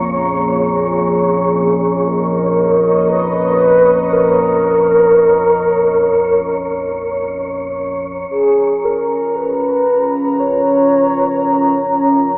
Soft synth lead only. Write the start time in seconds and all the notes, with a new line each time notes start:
0.03 G#4
2.08 A#4
3.09 B4
4.12 A#4
8.31 G#4
8.84 A#4
9.36 B4
10.39 C#5